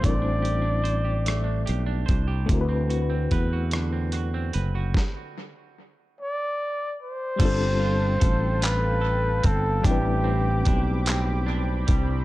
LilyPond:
<<
  \new Staff \with { instrumentName = "Analog synth pad" } { \time 6/8 \key a \minor \tempo 4. = 49 r2. | r2. | r2. | <a' f'' g'' a''>2. |
<c' b'' d'''>2. | }
  \new Staff \with { instrumentName = "Flugelhorn" } { \time 6/8 \key a \minor d''2 r4 | r2. | r4. d''4 c''8~ | c''4. b'4 a'8 |
g'2 r4 | }
  \new Staff \with { instrumentName = "Clean electric guitar" } { \time 6/8 \key a \minor a16 d'16 g'16 d'16 c''16 g'16 a16 d'16 g'16 d'16 c''16 g'16 | d16 c'16 fis'16 c'16 b'16 fis'16 d16 c'16 fis'16 c'16 b'16 fis'16 | r2. | <g a'>8 f'8 a'8 f'8 a'8 c'8 |
<a, d'>8 c'8 d'8 c'8 d'8 g8 | }
  \new Staff \with { instrumentName = "Reed electric piano" } { \time 6/8 \key a \minor <g c' d' e' bes' c''>2. | <a c' e' fis' bes' b'>2. | r2. | <g b c' d' f' a'>2. |
<g c' d' e' b'>2. | }
  \new Staff \with { instrumentName = "Fretless electric bass" } { \clef bass \time 6/8 \key a \minor a,,2 b,,8 c,8 | d,4 e,4. fis,,8 | r2. | g,,4 a,,4. g,,8 |
a,,4 b,,4. c,8 | }
  \new DrumStaff \with { instrumentName = "Drums" } \drummode { \time 6/8 <hh bd>8 hh8 hh8 <hh ss>8 hh8 <hh bd>8 | <hh bd>8 hh8 <hh bd>8 <hh ss>8 hh8 hh8 | <bd sn>4. r4. | <cymc hh bd>4 <hh bd>8 <hc hh>4 <hh bd>8 |
<hh bd>4 <hh bd>8 <hc hh>4 <hh bd>8 | }
>>